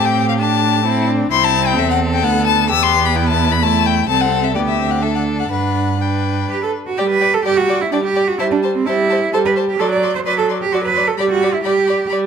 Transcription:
0.00 1.28 A2 medium
0.00 0.40 C4 medium
0.00 0.87 G4 medium
0.05 0.28 G5 medium
0.29 0.33 F5 medium
0.39 0.84 D4 medium
0.39 1.07 A5 medium
0.85 1.30 C4 medium
0.85 1.09 E4 medium
1.08 1.31 D4 medium
1.31 1.80 C2 medium
1.31 2.25 C4 medium
1.31 1.77 E4 medium
1.31 1.45 C6 medium
1.44 1.69 A5 medium
1.67 1.80 G5 medium
1.76 2.25 E2 medium
1.76 2.71 A4 medium
1.76 1.89 E5 medium
1.91 1.99 F#5 medium
2.14 2.25 G5 medium
2.23 2.72 D2 medium
2.23 2.69 B3 medium
2.23 2.46 F#5 loud
2.46 2.69 A5 medium
2.69 4.08 E2 medium
2.69 3.63 B3 medium
2.69 3.17 G4 medium
2.69 2.84 E6 loud
2.83 3.07 C6 loud
3.05 3.17 B5 medium
3.15 3.62 E4 medium
3.15 3.27 G5 medium
3.29 3.53 A5 medium
3.52 3.64 B5 medium
3.62 4.08 A3 medium
3.62 4.08 E4 medium
3.62 3.88 A5 loud
3.86 4.08 G5 medium
4.09 4.57 C2 medium
4.09 4.52 C4 medium
4.09 4.57 A4 medium
4.09 4.23 A5 medium
4.21 4.45 F#5 medium
4.44 4.54 E5 medium
4.55 5.51 D2 medium
4.55 4.80 B3 medium
4.55 5.04 G4 medium
4.55 4.60 D5 medium
4.68 4.93 E5 medium
4.79 5.04 C4 soft
4.91 5.04 F#5 medium
5.02 5.50 D4 medium
5.02 5.50 A4 medium
5.02 5.14 E5 medium
5.15 5.23 F#5 medium
5.39 5.50 F#5 medium
5.51 6.47 G2 medium
5.51 5.99 D4 medium
5.51 5.99 B4 soft
5.51 6.03 F#5 medium
6.00 6.75 D4 soft
6.00 6.75 B4 soft
6.00 6.49 G5 medium
6.50 6.61 G4 medium
6.63 6.71 A4 medium
6.87 6.99 F#4 medium
6.98 7.39 G3 medium
6.98 7.09 G4 medium
6.98 7.06 D5 medium
6.98 7.06 G5 medium
7.10 7.35 B4 medium
7.21 7.29 D5 soft
7.21 7.29 G5 medium
7.34 7.44 A4 medium
7.45 7.86 G3 medium
7.45 7.59 G4 medium
7.45 7.53 D5 medium
7.45 7.53 G5 medium
7.57 7.83 F#4 medium
7.68 7.77 D5 medium
7.68 7.76 G5 medium
7.81 7.91 E4 medium
7.91 8.33 G3 medium
7.91 7.97 D4 medium
7.91 8.01 D5 medium
7.91 8.00 G5 medium
8.04 8.29 G4 medium
8.16 8.24 D5 medium
8.16 8.24 G5 medium
8.28 8.38 F#4 medium
8.39 8.80 G3 medium
8.39 8.44 E4 medium
8.39 8.48 C5 medium
8.39 8.47 A5 medium
8.51 8.59 D4 medium
8.63 8.72 C5 medium
8.63 8.71 A5 medium
8.75 8.88 C4 medium
8.86 9.28 G3 medium
8.86 9.33 E4 medium
8.86 8.96 C5 medium
8.86 8.94 A5 medium
9.09 9.19 C5 medium
9.09 9.17 A5 medium
9.32 9.74 G3 medium
9.32 9.38 A4 medium
9.32 9.42 C5 medium
9.32 9.41 A5 medium
9.45 9.53 B4 medium
9.56 9.64 C5 medium
9.56 9.65 A5 medium
9.69 9.81 G4 medium
9.79 10.20 F#3 medium
9.79 9.91 A4 medium
9.79 9.89 D5 medium
9.79 9.88 C6 medium
9.92 10.14 D5 medium
10.03 10.11 D5 soft
10.03 10.11 C6 medium
10.15 10.19 C5 medium
10.26 10.67 F#3 medium
10.26 10.37 B4 medium
10.26 10.34 D5 medium
10.26 10.34 C6 medium
10.38 10.46 A4 medium
10.49 10.58 D5 medium
10.49 10.57 C6 medium
10.61 10.74 G4 medium
10.72 11.13 F#3 medium
10.72 10.84 F#4 medium
10.72 10.82 D5 medium
10.72 10.80 C6 medium
10.84 11.09 B4 medium
10.95 11.05 D5 medium
10.95 11.03 C6 medium
11.08 11.18 A4 medium
11.18 11.58 G3 medium
11.18 11.23 G4 medium
11.18 11.28 D5 medium
11.18 11.26 B5 medium
11.31 11.55 F#4 medium
11.42 11.51 D5 medium
11.42 11.50 B5 medium
11.54 11.64 E4 medium
11.64 12.05 G3 medium
11.64 12.09 G4 medium
11.64 11.73 D5 medium
11.64 11.72 B5 medium
11.87 11.97 D5 medium
11.87 11.95 B5 medium
12.09 12.26 G3 medium
12.09 12.20 D5 medium
12.09 12.17 B5 medium

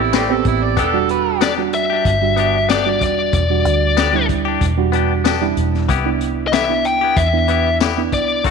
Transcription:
0.00 0.41 A1 loud
0.00 0.23 B3 medium
0.00 0.24 C4 medium
0.00 0.14 E4 medium
0.00 0.24 G4 medium
0.13 0.33 E3 medium
0.13 0.33 A3 medium
0.13 0.34 C4 medium
0.13 0.34 G4 medium
0.13 0.23 G4 medium
0.13 0.24 B4 medium
0.13 0.34 D5 medium
0.13 snare loud
0.13 closed hi-hat medium
0.13 tambourine loud
0.29 0.77 B3 loud
0.29 0.77 C4 loud
0.29 0.77 G4 loud
0.29 0.46 A4 medium
0.45 0.77 A1 medium
0.45 0.66 E4 medium
0.45 kick medium
0.45 closed hi-hat medium
0.64 0.77 D5 medium
0.77 2.01 E1 loud
0.77 0.97 B3 medium
0.77 0.98 D4 medium
0.77 0.85 E4 medium
0.77 0.98 G4 loud
0.77 1.09 A4 medium
0.77 kick loud
0.77 closed hi-hat medium
0.93 1.51 G3 medium
0.93 1.51 D4 medium
0.93 1.51 F#4 loud
1.09 1.41 B4 medium
1.09 closed hi-hat medium
1.41 1.61 B3 medium
1.41 1.61 D4 medium
1.41 1.62 G4 medium
1.41 1.51 D5 medium
1.41 snare loud
1.41 closed hi-hat medium
1.41 tambourine loud
1.58 2.15 G3 medium
1.58 2.15 D4 medium
1.58 2.16 F#4 medium
1.73 2.70 E5 loud
1.73 closed hi-hat medium
1.90 2.10 D4 soft
1.90 2.09 G4 medium
2.05 3.01 G1 medium
2.05 kick medium
2.05 closed hi-hat medium
2.22 2.79 G3 medium
2.22 2.79 D4 medium
2.22 2.80 F#4 medium
2.37 2.57 B3 medium
2.37 2.58 D4 medium
2.37 2.58 G4 medium
2.37 closed hi-hat medium
2.69 2.89 B3 medium
2.69 2.89 D4 medium
2.69 2.90 G4 medium
2.69 3.02 D5 medium
2.69 snare loud
2.69 closed hi-hat medium
2.69 tambourine loud
2.86 3.43 G3 medium
2.86 3.43 D4 medium
2.86 3.44 F#4 medium
3.01 3.31 E1 medium
3.01 4.26 D5 medium
3.01 kick medium
3.01 closed hi-hat medium
3.33 3.65 E1 loud
3.33 kick loud
3.33 closed hi-hat medium
3.50 4.07 G3 medium
3.50 4.07 D4 medium
3.50 4.08 F#4 medium
3.65 4.57 D2 medium
3.65 closed hi-hat medium
3.97 4.17 B3 medium
3.97 4.17 D4 medium
3.97 4.18 G4 loud
3.97 snare loud
3.97 closed hi-hat medium
3.97 tambourine loud
4.13 4.71 G3 medium
4.13 4.71 D4 medium
4.13 4.71 E4 loud
4.29 kick medium
4.29 closed hi-hat medium
4.45 4.66 D4 medium
4.45 4.64 G4 medium
4.61 5.53 E1 medium
4.61 kick medium
4.61 closed hi-hat medium
4.78 5.35 G3 medium
4.78 5.35 D4 medium
4.78 5.35 F#4 medium
4.92 5.12 B3 medium
4.92 5.13 D4 medium
4.92 5.14 G4 medium
4.92 closed hi-hat medium
5.24 5.44 B3 medium
5.24 5.45 D4 medium
5.24 5.46 G4 medium
5.24 5.85 A5 medium
5.24 snare loud
5.24 closed hi-hat medium
5.24 tambourine loud
5.41 5.89 G3 medium
5.41 5.89 D4 medium
5.41 5.89 E4 loud
5.57 5.89 E1 medium
5.57 closed hi-hat medium
5.74 snare soft
5.89 7.13 C2 loud
5.89 6.09 E3 medium
5.89 6.09 B3 medium
5.89 6.09 E4 medium
5.89 6.10 G4 medium
5.89 kick medium
5.89 closed hi-hat medium
6.05 6.63 B3 medium
6.05 6.63 D4 medium
6.05 6.63 E4 medium
6.21 closed hi-hat medium
6.48 6.54 D#5 medium
6.52 6.72 E3 medium
6.52 6.73 B3 medium
6.52 6.73 E4 medium
6.52 6.73 G4 medium
6.52 6.86 E5 medium
6.52 snare loud
6.52 closed hi-hat medium
6.52 tambourine loud
6.69 7.27 B3 medium
6.69 7.27 D4 medium
6.69 7.27 E4 medium
6.85 7.18 G5 medium
6.85 closed hi-hat medium
7.01 7.22 B3 soft
7.01 7.21 E4 soft
7.01 7.20 G4 medium
7.17 8.12 E2 medium
7.17 7.77 E5 medium
7.17 kick medium
7.17 closed hi-hat medium
7.33 7.91 B3 medium
7.33 7.91 D4 medium
7.33 7.91 E4 medium
7.48 7.68 E3 medium
7.48 7.69 B3 medium
7.48 7.69 E4 medium
7.48 7.70 G4 medium
7.48 closed hi-hat medium
7.80 8.00 E3 medium
7.80 8.01 B3 medium
7.80 8.01 E4 medium
7.80 8.02 G4 medium
7.80 snare loud
7.80 closed hi-hat medium
7.80 tambourine loud
7.98 8.45 B3 medium
7.98 8.45 D4 medium
7.98 8.45 E4 medium
8.12 8.44 C2 medium
8.12 8.43 D5 loud
8.12 kick medium
8.12 closed hi-hat medium
8.44 8.51 D#3 medium
8.44 8.51 A3 medium
8.44 8.51 D4 medium
8.44 8.51 F#4 medium
8.44 kick loud
8.44 closed hi-hat medium

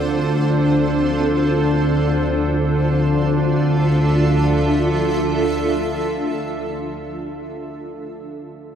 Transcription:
0.00 2.44 D2 medium
0.00 2.44 D3 medium
0.00 2.45 D4 medium
0.00 2.46 F4 medium
0.00 2.46 A4 medium
0.00 2.50 C5 medium
2.45 6.83 D2 medium
2.45 6.83 D3 medium
2.45 6.85 D4 medium
2.62 7.00 F4 medium
2.77 7.14 A4 medium
2.92 7.16 E5 medium

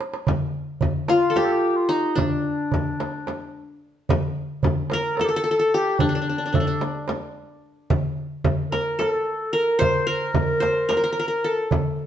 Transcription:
0.01 darbuka tek medium
0.14 darbuka ka medium
0.27 darbuka dum medium
0.27 frame drum medium
0.54 darbuka ka soft
0.81 darbuka dum medium
0.81 frame drum medium
1.08 1.39 F4 medium
1.08 2.44 F4 medium
1.08 darbuka tek medium
1.08 frame drum medium
1.30 2.47 A4 medium
1.36 2.62 G4 medium
1.36 1.46 G4 medium
1.36 darbuka tek medium
1.36 frame drum medium
1.45 1.53 A4 medium
1.52 1.78 G4 medium
1.76 1.93 F4 medium
1.89 2.21 D#4 medium
1.89 2.18 D#4 medium
2.15 3.77 D4 medium
2.15 3.78 D4 medium
2.15 darbuka dum medium
2.15 frame drum medium
2.45 darbuka ka soft
2.72 darbuka dum medium
2.72 frame drum medium
3.00 darbuka tek medium
3.00 frame drum medium
3.27 darbuka tek medium
3.27 frame drum medium
3.42 darbuka ka soft
4.09 darbuka dum medium
4.09 frame drum loud
4.36 darbuka ka soft
4.63 darbuka dum medium
4.63 frame drum medium
4.90 5.18 A#4 medium
4.90 5.27 A#4 medium
4.90 darbuka tek medium
4.90 frame drum medium
5.16 5.26 A4 medium
5.16 darbuka tek medium
5.16 frame drum medium
5.21 5.31 G4 medium
5.21 5.28 A4 medium
5.29 5.36 A4 medium
5.29 5.56 A4 medium
5.29 darbuka ka soft
5.36 5.43 A4 medium
5.44 5.51 A4 medium
5.51 5.59 A4 medium
5.57 5.76 A4 medium
5.57 6.76 A4 medium
5.74 6.01 G4 medium
5.74 7.00 G4 medium
5.99 6.56 D4 medium
5.99 6.09 D4 medium
5.99 darbuka dum medium
5.99 frame drum medium
6.09 6.15 D4 medium
6.15 6.21 D4 medium
6.22 6.29 D4 soft
6.28 6.38 D4 soft
6.28 darbuka ka soft
6.38 6.45 D4 soft
6.46 6.52 D4 soft
6.52 6.60 D4 soft
6.52 6.82 A4 medium
6.52 darbuka dum medium
6.52 frame drum medium
6.60 6.67 D4 medium
6.67 8.16 D4 medium
6.81 darbuka tek medium
6.81 frame drum medium
7.08 darbuka tek medium
7.08 frame drum medium
7.90 frame drum medium
7.90 darbuka dum medium
8.18 darbuka ka soft
8.44 darbuka dum medium
8.44 frame drum medium
8.71 9.01 A#4 medium
8.71 9.05 A#4 medium
8.71 darbuka tek medium
8.71 frame drum medium
8.99 9.59 A4 medium
8.99 9.54 A4 medium
8.99 darbuka tek medium
8.99 frame drum medium
9.13 darbuka ka soft
9.53 9.81 A#4 medium
9.53 10.06 A#4 medium
9.79 10.60 C5 loud
9.79 10.09 C5 medium
9.79 frame drum medium
9.79 darbuka dum medium
10.07 10.88 A#4 medium
10.07 10.89 A#4 medium
10.34 darbuka dum medium
10.34 frame drum medium
10.60 11.66 C5 medium
10.60 darbuka tek medium
10.60 frame drum medium
10.89 10.96 A#4 medium
10.89 11.68 A#4 medium
10.89 darbuka tek medium
10.89 frame drum medium
10.97 11.03 A#4 medium
11.04 11.12 A#4 medium
11.04 darbuka ka soft
11.12 11.19 A#4 medium
11.20 11.27 A#4 medium
11.28 11.50 A#4 medium
11.44 12.06 A4 medium
11.71 darbuka dum medium
11.71 frame drum medium
11.99 darbuka ka soft

